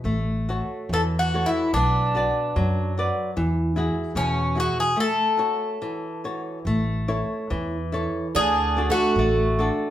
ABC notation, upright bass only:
X:1
M:2/4
L:1/8
Q:1/4=72
K:A
V:1 name="Upright bass" clef=bass
A,,,2 E,,2 | B,,,2 F,,2 | E,,2 E,,2 | z4 |
A,,,2 E,,2 | D,,2 A,,,2 |]